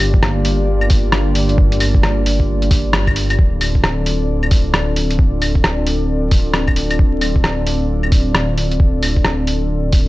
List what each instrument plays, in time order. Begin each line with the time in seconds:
Already playing: detuned saw bass G1, ambient pad A#3 D4 F4 G4 D5
0.00 open hi-hat, claves
0.14 kick
0.23 cross-stick
0.45 open hi-hat
0.81 claves
0.90 kick, open hi-hat
1.12 cross-stick
1.35 open hi-hat
1.49 closed hi-hat
1.58 kick
1.72 closed hi-hat
1.80 open hi-hat, claves
1.95 kick
2.03 cross-stick
2.26 open hi-hat
2.40 kick
2.62 closed hi-hat
2.71 kick, open hi-hat
2.93 cross-stick
3.07 kick, claves
3.16 open hi-hat
3.30 closed hi-hat, claves
3.38 detuned saw bass D1, ambient pad C4 D4 F4 A4 D5, kick
3.61 open hi-hat, claves
3.75 kick
3.84 cross-stick
4.06 open hi-hat
4.43 claves
4.51 kick, open hi-hat
4.74 cross-stick
4.96 open hi-hat
5.11 closed hi-hat
5.19 kick
5.42 open hi-hat, claves
5.55 kick
5.64 cross-stick
5.87 open hi-hat
6.31 kick, open hi-hat
6.54 cross-stick
6.68 kick, claves
6.76 open hi-hat
6.91 closed hi-hat, claves
6.99 kick
7.21 open hi-hat, claves
7.36 kick
7.44 cross-stick
7.67 open hi-hat
8.03 claves
8.12 kick, open hi-hat
8.35 cross-stick
8.58 open hi-hat
8.71 closed hi-hat
8.80 kick
9.03 open hi-hat, claves
9.16 kick
9.24 cross-stick
9.47 open hi-hat
9.92 kick, open hi-hat